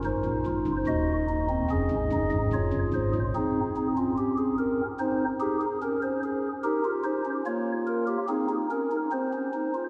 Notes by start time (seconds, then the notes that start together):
0.05 G#1 G#2 D#4 C5
0.25 A#1 A#2
0.46 G#1 G#2 F4
0.67 F#1 F#2
0.87 D#1 D#2 F#4 D#5
1.29 D#4
1.50 C4
1.70 F1 F2 C#4 G#4
1.91 G#1 G#2
2.12 F#1 F#2 D#4
2.32 G#1 G#2
2.53 F1 F2 F4 C#5
2.73 F#1 F#2
2.94 G#1 G#2 C5
3.15 A#1 A#2
3.35 C4 D#4 G#4
3.76 C4 D#4
3.97 C#4 F4
4.18 G4
4.38 G#4
4.58 A#4
4.99 C4 D#4 C5
5.40 D#4 G4 G#4
5.61 G#4
5.82 C#4 A#4
6.03 C5
6.23 G#4
6.64 D#4 G4 A#4
6.85 F4
7.04 D#4 C5
7.25 C#4
7.46 A#3 F4 C#5
7.87 A#4
8.07 G4
8.29 C4 D#4 G#4
8.49 D#4
8.71 C#4 A#4
8.91 D#4
9.12 C4 C5
9.33 C#4
9.53 D#4
9.75 F4